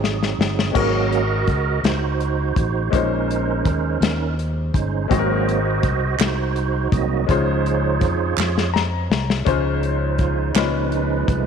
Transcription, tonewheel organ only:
Already playing: F#3 C4 D#4 G#4
0.75 F#3 A#3 C#4 F#4 A#4 D#5
1.84 D#4 F#4 C5
2.94 G#3 C#4 D#4 A#4 C5
4.74 G#3 C#4 D#4 C5
5.10 F#3 A#3 C4 F#4 C5 D#5
6.19 D#4 F#4 C5
6.92 F#3 A#3 C4 D#5
7.29 F3 D#4 F4 G#4 C5 C#5
9.46 F3 D#4 C5
10.20 F4
10.38 D#4
10.55 F3 G#3 D#4 B4
10.85 C4
10.92 C#4
11.28 B3
11.38 A3

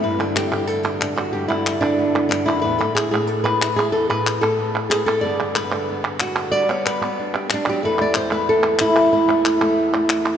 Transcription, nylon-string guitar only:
0.03 G2 B4
0.19 D3 A4
0.36 G4
0.52 D3 G4
0.67 A4
0.83 G4
1.02 D4
1.16 F#4
1.33 G2 G4
1.48 D3 E4
1.81 D3 D4
1.99 B3
2.15 B3
2.29 G2 D4
2.46 F#2 E4
2.62 E2 A2 B3 B4
2.66 E4
2.79 A2 A4
2.95 G#4
3.11 A2 G#4
3.27 A4
3.44 B4
3.62 E4
3.76 G#4
3.92 E2 A4
4.10 A2 B4
4.41 A2 A4
4.59 B3
4.90 G#4
5.06 A4
5.21 G2 D3 D5
5.25 B3 D4
5.40 D3
5.56 B4
5.74 D3
5.89 B3
6.21 F#4
6.37 G4
6.52 G3 D5
6.69 B3 C#5
6.87 B4
7.01 B3
7.19 D4
7.35 G4
7.50 G3 D4
7.67 F#3 G4
7.83 E2 A3 E4 A4 B4
7.99 A3 D5
8.17 C5
8.31 A3 B4
8.49 A4
8.81 E4
8.97 A3
9.13 E2 E4
9.28 A3
9.61 A3
9.94 A3

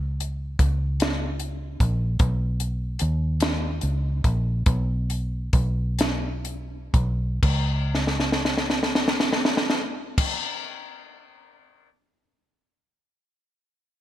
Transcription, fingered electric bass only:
Already playing: C#2
0.60 C#2
1.81 A#1
2.20 B1
3.02 D#2
3.83 C#2
4.25 A#1
4.67 B1
5.53 B1
6.94 B1
7.43 C#2

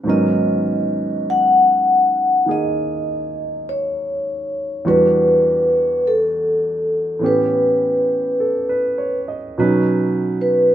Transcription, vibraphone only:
0.10 D#5
1.30 F#5
2.51 D#5
3.69 C#5
4.88 B4
6.07 A4
7.26 B4
10.41 B4

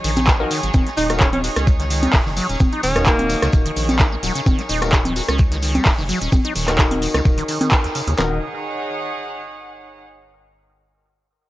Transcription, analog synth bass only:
0.04 A#1
0.63 G#1
0.74 D#1
0.97 D#1
1.56 C#2
2.14 D#1
2.26 F#1
2.49 D#1
2.60 D#1
2.83 D#1
3.42 C#2
3.53 D#1
3.76 A#1
4.23 D#1
4.46 D#1
4.69 D#1
5.28 C#2
5.86 D#1
5.98 F#1
6.21 D#1
6.32 D#1
6.56 D#1
7.15 C#2
7.25 D#1
8.07 D#2
8.18 D#1

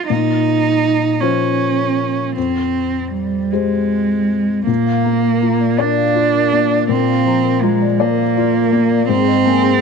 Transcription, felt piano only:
0.10 A#2
1.22 F3 F4 C5
2.37 F2
3.52 G#3 G4 C5
4.67 A#2
5.06 A#3
5.42 F4
5.78 D5
6.15 F4
6.52 A#3
6.89 A#2
7.26 F3
7.63 F4
8.00 D5
8.37 F4
8.72 A#3
9.09 G#2
9.45 A#3

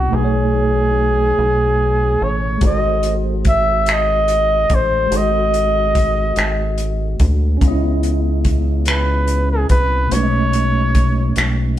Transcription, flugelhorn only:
Already playing: F#4
0.15 G#4
2.24 C#5
2.66 D#5
3.48 E5
3.92 D#5
4.75 C5
5.17 D#5
8.89 B4
9.51 G#4
9.70 B4
10.12 C#5

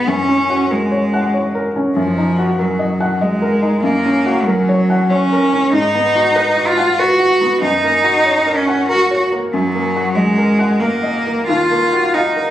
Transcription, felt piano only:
Already playing: G#2 B3 F#4 G#4 B4 D#5 F#5
0.08 F#2
0.28 C#4
0.50 F#4
0.70 A#4
0.92 C#5
1.13 F#5
1.34 C#5
1.55 A#4
1.76 C#4
1.96 F#2
2.18 D#4
2.39 F#4
2.59 A#4
2.79 D#5
3.00 F#5
3.21 D#5
3.42 A#4
3.62 D#4
3.84 F#2
4.05 C#4
4.26 F#4
4.47 A#4
4.69 C#5
4.90 F#5
5.11 C#5
5.32 A#4
5.53 C#4
5.73 G#2
5.95 B3
6.15 F#4
6.36 B4
6.58 F#4
6.78 F#5
6.99 B4
7.20 F#4
7.41 B3
7.62 F#2
7.84 A#3
8.04 F#4
8.26 C#5
8.46 A#4
8.68 F#5
8.89 A#4
9.11 C#5
9.32 A#3
9.54 F#2
9.75 A#3
9.96 F#4
10.16 D#5
10.38 A#4
10.59 F#5
10.81 A#4
11.03 D#5
11.26 A#3
11.49 D#2
11.71 A#3
11.93 F#4
12.15 F5
12.36 A#4

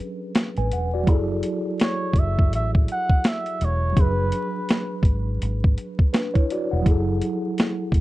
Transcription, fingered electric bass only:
0.58 A1
0.72 E1
1.08 F#1
2.14 F#1
2.53 A1
3.61 E1
3.97 F#1
5.03 G#1
5.42 G#1
6.73 E1
6.86 F#1
7.93 F#1

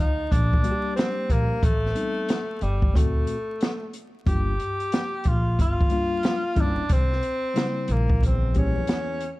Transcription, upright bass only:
0.00 D2
0.32 A#1
1.30 A#1
1.63 A1
2.62 G1
2.96 D2
4.27 G1
5.26 A#1
5.59 G1
6.57 G1
6.90 C2
7.89 A#1
8.76 F2

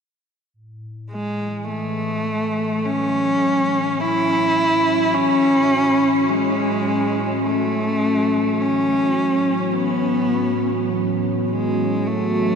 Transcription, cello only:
1.11 G#3
1.69 A3
2.85 C#4
4.00 E4
5.14 C#4
6.30 G#3
7.45 A3
8.60 C#4
9.74 B3
11.50 G#3
12.07 A3

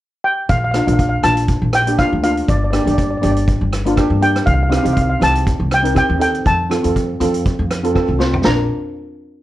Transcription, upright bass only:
0.49 A#1
0.87 A#1
1.24 A#1
1.62 A#1
2.13 D2
2.48 G1
2.87 G1
3.23 G1
3.61 G1
4.10 G2
4.47 C2
4.85 C2
5.21 C2
5.59 C2
6.10 D#2
6.46 F2
6.85 F2
7.20 F2
7.59 F2
8.08 C2
8.45 A#1

